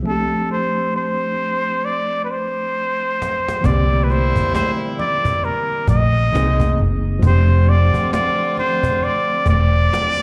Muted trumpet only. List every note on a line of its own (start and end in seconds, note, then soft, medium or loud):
0.07 0.48 A4 medium
0.52 0.93 C5 medium
0.96 1.86 C5 medium
1.85 2.24 D5 medium
2.24 2.32 B4 medium
2.31 3.67 C5 medium
3.66 4.05 D5 medium
4.04 4.12 B4 medium
4.11 4.54 C5 medium
4.55 4.71 C5 medium
5.00 5.46 D5 medium
5.45 5.89 A#4 medium
5.90 6.95 D#5 medium
7.24 7.71 C5 medium
7.69 8.13 D5 loud
8.14 8.54 D5 loud
8.59 9.05 C5 medium
9.04 9.47 D5 loud
9.49 10.22 D5 loud